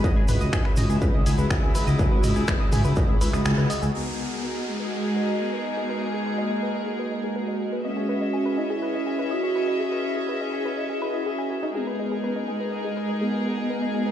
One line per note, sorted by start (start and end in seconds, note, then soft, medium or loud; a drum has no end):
0.00 3.90 G#3 medium
0.00 11.75 F#4 medium
0.04 0.12 C#2 loud
0.04 3.91 C#3 medium
0.04 3.91 D#4 medium
0.04 3.91 E4 medium
0.04 0.16 D#5 medium
0.04 kick loud
0.04 shaker soft
0.16 0.24 G#1 medium
0.16 0.26 G#4 medium
0.28 0.36 C#2 medium
0.28 0.40 B4 medium
0.28 mid tom medium
0.28 open hi-hat loud
0.28 shaker medium
0.41 0.49 C#2 medium
0.41 0.52 D#5 medium
0.41 shaker soft
0.53 0.61 G#1 loud
0.53 0.62 G#4 medium
0.53 finger snap loud
0.53 kick loud
0.53 shaker soft
0.65 0.77 B4 medium
0.65 finger snap soft
0.76 0.85 C#2 medium
0.76 0.89 D#5 medium
0.76 mid tom medium
0.76 open hi-hat medium
0.76 shaker medium
0.82 3.94 E6 medium
0.90 0.97 C#2 medium
0.90 0.99 G#4 medium
0.90 shaker soft
1.01 1.10 C#2 loud
1.01 1.13 B4 medium
1.01 kick loud
1.01 shaker soft
1.14 1.22 C#2 medium
1.14 1.26 D#5 medium
1.26 1.34 C#2 medium
1.26 1.36 G#4 medium
1.26 open hi-hat loud
1.26 shaker medium
1.38 1.46 C#2 medium
1.38 1.50 B4 medium
1.38 shaker soft
1.50 1.58 C#2 loud
1.50 1.62 D#5 medium
1.50 finger snap loud
1.50 kick loud
1.50 shaker soft
1.63 1.71 C#2 medium
1.63 1.72 G#4 medium
1.75 1.87 B4 medium
1.75 open hi-hat medium
1.75 shaker medium
1.87 1.95 C#2 medium
1.87 1.99 D#5 medium
1.87 shaker medium
1.99 2.07 C#2 loud
1.99 2.09 G#4 medium
1.99 kick loud
1.99 shaker soft
2.12 2.19 G#1 medium
2.12 2.23 B4 medium
2.23 2.32 C#2 medium
2.23 2.35 D#5 medium
2.23 mid tom medium
2.23 open hi-hat loud
2.23 shaker medium
2.36 2.44 C#2 medium
2.36 2.45 G#4 medium
2.36 shaker medium
2.48 2.56 G#1 loud
2.48 2.60 B4 medium
2.48 finger snap loud
2.48 kick loud
2.48 shaker soft
2.60 2.72 D#5 medium
2.72 2.80 C#2 medium
2.72 2.82 G#4 medium
2.72 mid tom medium
2.72 open hi-hat medium
2.72 shaker medium
2.84 2.92 C#2 medium
2.84 2.96 B4 medium
2.84 shaker soft
2.96 3.05 B1 loud
2.96 3.08 D#5 medium
2.96 kick loud
2.96 shaker soft
3.09 3.17 C#2 medium
3.09 3.19 G#4 medium
3.21 3.29 C#2 loud
3.21 3.33 B4 medium
3.21 open hi-hat loud
3.21 shaker medium
3.33 3.41 C#2 medium
3.33 3.45 D#5 medium
3.33 finger snap soft
3.33 shaker soft
3.45 3.53 C#2 loud
3.45 3.55 G#4 medium
3.45 finger snap loud
3.45 shaker soft
3.58 3.66 C#2 medium
3.58 3.69 B4 medium
3.70 3.82 D#5 medium
3.70 open hi-hat medium
3.70 shaker medium
3.82 3.90 C#2 medium
3.82 3.92 G#4 medium
3.82 shaker medium
3.94 7.85 G#3 medium
3.94 7.81 G#3 medium
3.94 4.69 B3 loud
3.94 7.81 D#4 medium
3.94 4.04 G#4 medium
3.94 7.81 G#4 medium
3.94 7.81 A#4 medium
3.94 downlifter medium
4.07 4.18 B4 medium
4.19 4.30 D#5 medium
4.30 4.40 G#4 medium
4.30 7.85 D#5 medium
4.43 4.55 B4 medium
4.55 4.67 D#5 medium
4.67 5.42 G#3 loud
4.67 4.77 G#4 medium
4.80 4.91 B4 medium
4.92 5.04 D#5 medium
5.04 5.14 G#4 medium
5.16 5.28 B4 medium
5.28 5.40 D#5 medium
5.41 6.29 B3 loud
5.41 5.50 G#4 medium
5.53 5.64 B4 medium
5.65 5.77 D#5 medium
5.77 5.87 G#4 medium
5.89 6.01 B4 medium
6.02 6.13 D#5 medium
6.14 6.23 G#4 medium
6.26 6.38 B4 medium
6.38 7.86 A#3 loud
6.38 6.50 D#5 medium
6.50 6.60 G#4 medium
6.63 6.74 B4 medium
6.75 6.86 D#5 medium
6.87 6.97 G#4 medium
6.99 7.11 B4 medium
7.11 7.23 D#5 medium
7.24 7.33 G#4 medium
7.36 7.47 B4 medium
7.48 7.60 D#5 medium
7.60 7.70 G#4 medium
7.73 7.84 B4 medium
7.84 8.59 C#4 loud
7.84 12.64 C#4 medium
7.84 11.71 C#4 medium
7.84 11.71 G#4 medium
7.84 11.71 D#5 medium
7.84 7.96 D#5 medium
7.84 11.71 E5 medium
7.97 8.06 G#4 medium
8.06 11.75 E4 medium
8.06 8.21 B4 medium
8.21 8.33 D#5 medium
8.33 8.43 G#4 medium
8.46 8.57 B4 medium
8.58 9.21 E4 loud
8.58 8.69 D#5 medium
8.70 8.79 G#4 medium
8.82 8.94 B4 medium
8.94 9.06 D#5 medium
9.07 9.16 G#4 medium
9.19 9.30 B4 medium
9.31 10.30 F#4 loud
9.31 9.43 D#5 medium
9.43 9.53 G#4 medium
9.55 9.67 B4 medium
9.68 9.79 D#5 medium
9.80 9.89 G#4 medium
9.92 10.04 B4 medium
10.04 10.16 D#5 medium
10.16 10.26 G#4 medium
10.29 11.65 G#4 loud
10.29 10.40 B4 medium
10.41 10.52 D#5 medium
10.53 10.62 G#4 medium
10.65 10.77 B4 medium
10.77 10.89 D#5 medium
10.90 10.99 G#4 medium
11.02 11.13 B4 loud
11.14 11.23 D#5 medium
11.26 11.38 G#4 medium
11.38 11.48 G#5 medium
11.51 11.62 G#4 medium
11.63 11.72 D#4 loud
11.75 14.12 G#3 medium
11.75 12.38 B3 loud
11.75 14.12 D#4 medium
11.75 11.84 G#4 medium
11.75 14.12 G#4 medium
11.75 14.12 A#4 medium
11.87 11.99 B4 medium
11.92 14.12 F#4 medium
11.99 12.11 D#5 medium
12.04 14.12 D#5 medium
12.12 12.21 G#4 medium
12.24 12.35 B4 medium
12.36 12.48 D#5 medium
12.48 13.12 G#3 loud
12.48 12.58 G#4 medium
12.60 12.72 B4 medium
12.72 12.84 D#5 medium
12.85 12.94 G#4 medium
12.97 13.08 B4 medium
13.09 13.21 D#5 medium
13.21 14.12 B3 loud
13.21 13.31 G#4 medium
13.33 13.45 B4 medium
13.46 13.57 D#5 medium
13.58 13.67 G#4 medium
13.70 13.82 B4 medium
13.82 13.94 D#5 medium
13.94 14.04 G#4 medium
14.07 14.12 B4 medium